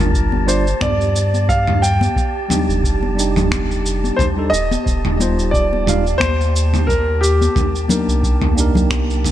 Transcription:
0.00 0.74 G1 loud
0.00 0.43 G3 medium
0.00 0.44 D4 medium
0.00 0.44 F4 medium
0.00 9.32 G4 medium
0.00 0.45 A#4 medium
0.00 0.51 A#4 medium
0.00 9.32 A5 medium
0.00 shaker soft
0.14 kick loud
0.14 shaker soft
0.32 high conga medium
0.46 0.64 G3 medium
0.46 0.64 D4 medium
0.46 0.65 F4 medium
0.46 0.83 C5 medium
0.46 0.65 D5 medium
0.46 shaker medium
0.67 shaker soft
0.81 2.09 G2 loud
0.81 1.51 D5 medium
0.81 finger snap medium
0.81 kick medium
0.81 mid tom medium
0.81 high conga medium
0.81 shaker soft
1.01 shaker soft
1.16 shaker medium
1.34 high conga medium
1.34 shaker soft
1.49 1.84 F5 loud
1.49 kick loud
1.49 shaker soft
1.67 mid tom medium
1.82 3.13 G5 loud
1.82 shaker medium
2.01 high conga medium
2.01 shaker soft
2.16 kick loud
2.16 shaker soft
2.49 3.13 G3 medium
2.49 3.14 D4 medium
2.49 3.14 D#4 medium
2.49 3.15 G4 medium
2.49 mid tom medium
2.49 high conga medium
2.49 low conga medium
2.49 shaker medium
2.69 4.12 F1 medium
2.69 shaker soft
2.84 kick medium
2.84 shaker soft
3.03 high conga medium
3.15 4.31 G3 medium
3.15 4.32 D4 medium
3.15 4.33 D#4 medium
3.19 4.34 G4 medium
3.19 shaker medium
3.36 mid tom medium
3.36 low conga medium
3.36 shaker soft
3.51 finger snap medium
3.51 kick medium
3.51 high conga medium
3.51 shaker soft
3.71 shaker soft
3.86 shaker medium
4.04 high conga medium
4.04 shaker soft
4.17 4.24 C5 loud
4.17 kick loud
4.17 mid tom medium
4.17 shaker soft
4.36 4.51 G3 medium
4.36 4.51 D4 medium
4.36 4.52 D#4 medium
4.36 4.52 A4 medium
4.50 4.77 D#1 medium
4.50 5.55 D#5 loud
4.50 shaker medium
4.71 high conga medium
4.71 shaker soft
4.86 6.14 D#1 medium
4.86 kick medium
4.86 shaker soft
5.05 mid tom medium
5.19 5.83 G3 medium
5.19 5.84 D#4 medium
5.19 5.84 F4 medium
5.19 5.85 C5 medium
5.19 high conga medium
5.19 shaker medium
5.39 shaker soft
5.51 6.22 D5 medium
5.51 kick medium
5.51 shaker soft
5.73 high conga medium
5.87 6.04 G3 medium
5.87 6.04 D#4 medium
5.87 6.05 F4 medium
5.87 6.05 F5 medium
5.87 mid tom medium
5.87 shaker medium
6.07 shaker soft
6.18 7.49 D#2 loud
6.18 6.83 C5 loud
6.18 finger snap medium
6.18 kick medium
6.18 high conga medium
6.22 shaker soft
6.41 shaker soft
6.56 shaker medium
6.73 mid tom medium
6.73 high conga medium
6.73 shaker soft
6.87 7.22 A#4 loud
6.87 kick loud
6.87 shaker soft
7.21 9.32 G4 medium
7.21 shaker medium
7.41 high conga medium
7.41 shaker soft
7.56 kick loud
7.56 mid tom medium
7.56 shaker soft
7.75 shaker soft
7.88 8.53 A#3 medium
7.88 8.53 D4 medium
7.88 8.54 D#4 medium
7.88 8.54 A#4 medium
7.88 high conga medium
7.88 low conga medium
7.88 shaker medium
8.08 9.32 C2 medium
8.08 shaker soft
8.23 kick medium
8.23 shaker soft
8.41 mid tom medium
8.41 high conga medium
8.55 9.32 A#3 medium
8.55 9.32 D4 medium
8.55 9.32 D#4 medium
8.55 shaker medium
8.60 9.32 A#4 medium
8.75 low conga medium
8.75 shaker soft
8.90 finger snap medium
8.90 kick medium
8.90 high conga medium
8.90 shaker soft
9.10 shaker soft
9.24 mid tom medium
9.24 shaker medium

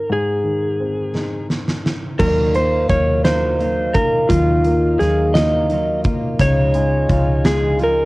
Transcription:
0.00 0.44 D#3 soft
0.00 0.80 C4 soft
0.00 0.40 D#4 soft
0.00 0.12 A#4 medium
0.09 2.15 G#2 medium
0.09 1.47 G#4 medium
0.44 1.80 D#3 soft
0.80 2.16 C4 soft
1.15 2.16 D#4 soft
1.15 snare soft
1.50 snare medium
1.68 snare medium
1.86 snare medium
2.18 2.85 D#2 medium
2.18 2.54 D#3 medium
2.18 2.88 D#3 medium
2.18 2.54 F#3 medium
2.18 6.36 F#3 medium
2.18 2.54 A#3 medium
2.18 6.37 A#3 medium
2.18 2.54 D#4 medium
2.18 2.53 F4 medium
2.18 2.55 A#4 medium
2.18 8.05 D#5 medium
2.18 6.36 F5 medium
2.18 kick loud
2.18 crash medium
2.54 3.23 A#3 medium
2.54 2.89 A#3 soft
2.54 2.89 D#4 soft
2.54 2.89 F4 soft
2.54 2.89 C5 medium
2.54 closed hi-hat soft
2.88 4.25 D#2 medium
2.88 3.58 D#3 medium
2.88 3.24 F#3 medium
2.88 3.24 A#3 medium
2.88 3.23 D#4 medium
2.88 3.23 F4 medium
2.88 3.24 C#5 medium
2.88 kick medium
2.88 closed hi-hat soft
3.24 3.60 D#3 soft
3.24 3.58 F#3 medium
3.24 3.94 A#3 medium
3.24 3.59 A#3 medium
3.24 3.59 D#4 medium
3.24 3.59 F4 medium
3.24 3.97 C5 medium
3.24 snare loud
3.24 closed hi-hat medium
3.59 4.28 D#3 soft
3.59 3.94 F#3 soft
3.59 3.95 A#3 medium
3.59 3.94 D#4 medium
3.59 3.93 F4 medium
3.59 closed hi-hat soft
3.94 4.63 A#3 medium
3.94 4.29 A#3 soft
3.94 4.29 D#4 soft
3.94 4.29 F4 soft
3.94 4.30 A#4 medium
3.94 kick medium
3.94 closed hi-hat soft
4.29 4.95 D#2 loud
4.29 4.64 D#3 medium
4.29 4.98 D#3 medium
4.29 4.64 F#3 medium
4.29 4.65 A#3 medium
4.29 4.64 D#4 medium
4.29 5.01 F4 medium
4.29 4.63 F4 medium
4.29 kick loud
4.29 closed hi-hat medium
4.64 5.33 A#3 medium
4.64 4.99 A#3 soft
4.64 5.00 D#4 soft
4.64 4.99 F4 soft
4.64 closed hi-hat soft
4.99 6.36 D#2 medium
4.99 5.68 D#3 medium
4.99 5.34 F#3 medium
4.99 5.35 A#3 medium
4.99 5.34 D#4 medium
4.99 5.34 F4 medium
4.99 5.32 G#4 medium
4.99 snare soft
4.99 closed hi-hat soft
5.34 5.71 D#3 medium
5.34 5.69 F#3 medium
5.34 6.03 A#3 medium
5.34 5.70 A#3 medium
5.34 5.70 D#4 medium
5.34 5.70 F4 medium
5.34 6.00 D#5 medium
5.34 snare loud
5.34 closed hi-hat medium
5.69 6.37 D#3 medium
5.69 6.05 F#3 medium
5.69 6.05 A#3 medium
5.69 6.05 D#4 medium
5.69 6.03 F4 medium
5.69 closed hi-hat soft
6.04 6.39 A#3 medium
6.04 6.40 A#3 soft
6.04 6.40 D#4 soft
6.04 6.40 F4 soft
6.04 kick medium
6.04 closed hi-hat soft
6.40 7.06 C#2 medium
6.40 8.05 C#3 medium
6.40 6.75 C#3 medium
6.40 8.05 C#3 medium
6.40 6.75 F3 medium
6.40 6.75 G#3 medium
6.40 6.75 D#4 medium
6.40 6.73 F4 medium
6.40 8.05 G#4 medium
6.40 7.49 C#5 medium
6.40 8.05 F5 medium
6.40 kick loud
6.40 closed hi-hat medium
6.74 7.44 G#3 medium
6.74 7.09 G#3 soft
6.74 7.10 D#4 soft
6.74 7.10 F4 soft
6.74 closed hi-hat soft
7.09 8.05 C#2 medium
7.09 7.45 F3 medium
7.09 7.44 G#3 medium
7.09 7.44 D#4 medium
7.09 7.78 F4 medium
7.09 7.43 F4 medium
7.09 kick medium
7.09 closed hi-hat soft
7.45 7.81 C#3 medium
7.45 7.78 F3 medium
7.45 8.05 G#3 medium
7.45 7.79 G#3 medium
7.45 7.80 D#4 medium
7.45 7.80 F4 medium
7.45 7.78 G#4 medium
7.45 snare loud
7.45 closed hi-hat medium
7.79 8.05 F3 medium
7.79 8.05 G#3 medium
7.79 8.05 D#4 medium
7.79 8.05 F4 medium
7.79 closed hi-hat soft
7.84 8.05 A#4 medium

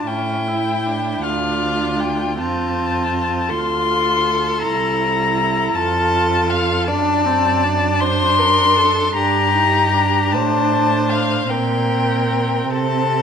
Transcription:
0.06 1.22 A2 soft
0.06 0.49 C#4 medium
0.06 1.25 E4 medium
0.06 1.25 G5 medium
0.48 0.88 E4 soft
0.86 2.38 D4 medium
1.23 2.40 D2 medium
1.23 2.38 F4 medium
1.23 2.02 F5 medium
2.00 2.40 G5 medium
2.38 3.52 F2 medium
2.38 3.52 C4 medium
2.38 3.51 F4 medium
2.38 3.51 A5 medium
3.49 4.64 D2 medium
3.49 4.62 F4 medium
3.49 5.74 A4 medium
3.49 4.62 C6 loud
4.62 5.76 C2 medium
4.62 5.77 E4 medium
4.62 5.77 A#5 loud
5.75 6.90 F2 medium
5.75 6.88 F4 medium
5.75 6.89 A4 medium
5.75 6.51 A5 loud
6.50 6.87 F5 medium
6.88 9.16 F#2 medium
6.88 7.27 D4 medium
6.88 8.03 D5 medium
6.88 8.02 A5 loud
7.25 7.66 C4 medium
7.64 9.16 D4 medium
8.00 8.40 C5 medium
8.00 9.15 C6 loud
8.39 8.79 A#4 medium
8.77 9.16 A4 medium
9.15 10.35 G2 medium
9.15 9.54 D4 medium
9.15 10.35 G4 medium
9.15 10.34 A#5 loud
9.55 9.96 D#4 medium
9.94 11.49 D4 medium
10.32 11.49 A2 medium
10.32 11.51 C5 medium
10.32 11.11 A5 loud
11.10 11.51 F5 loud
11.49 12.69 A#2 medium
11.49 13.22 C4 medium
11.49 12.72 A#4 medium
11.49 12.71 G5 medium
12.70 13.22 C3 medium
12.70 13.22 A4 medium
12.70 13.22 A5 medium

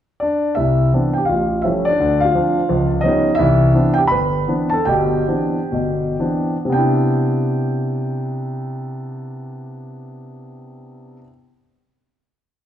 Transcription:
0.20 0.55 D4 medium
0.20 0.54 D5 medium
0.55 0.88 C2 medium
0.55 0.91 E4 medium
0.55 0.89 E5 medium
0.93 1.18 E3 soft
0.93 1.18 B3 soft
0.93 1.18 C4 soft
0.93 1.18 D4 soft
1.13 1.27 G5 medium
1.18 1.29 G4 soft
1.25 1.59 A1 medium
1.25 1.64 F5 medium
1.29 1.62 F4 medium
1.62 1.88 F3 soft
1.62 1.88 G3 soft
1.62 1.89 A3 soft
1.62 1.89 C#4 medium
1.62 1.70 E4 medium
1.62 1.67 E5 medium
1.85 2.21 D4 medium
1.85 2.22 D5 medium
2.00 2.30 D2 medium
2.00 2.30 D3 medium
2.20 2.88 F5 medium
2.25 2.90 F4 medium
2.35 2.59 F3 soft
2.35 2.59 C4 soft
2.35 2.59 D4 medium
2.69 3.00 C#2 medium
2.69 3.00 F3 medium
3.01 3.28 F3 soft
3.01 3.28 G3 soft
3.01 3.29 B3 soft
3.01 3.28 C#4 medium
3.01 3.39 D#5 medium
3.06 3.38 D#4 medium
3.35 3.93 E4 medium
3.35 3.97 E5 medium
3.39 3.70 C2 medium
3.39 3.70 E3 medium
3.74 3.99 E3 soft
3.74 3.99 B3 soft
3.74 3.99 C4 soft
3.74 3.99 D4 medium
3.94 3.99 G5 medium
3.98 4.03 G4 medium
4.07 4.43 G1 medium
4.07 4.44 B5 medium
4.12 4.46 B4 medium
4.47 4.74 E3 soft
4.47 4.75 B3 soft
4.47 4.75 C4 soft
4.47 4.75 D4 medium
4.70 4.84 A5 medium
4.74 4.86 A4 medium
4.85 5.22 G1 medium
4.85 5.22 B2 medium
4.85 6.51 G4 medium
4.85 6.49 G5 medium
5.28 5.58 E3 soft
5.28 5.58 B3 soft
5.28 5.58 C4 soft
5.28 5.58 D4 soft
5.72 6.14 G1 medium
5.72 6.14 B2 medium
6.19 6.55 E3 soft
6.19 6.55 B3 soft
6.19 6.55 C4 soft
6.19 6.56 D4 soft
6.65 11.16 C3 medium
6.69 11.20 B3 medium
6.69 11.19 G5 medium
6.74 11.24 D4 medium
6.78 11.29 E4 medium

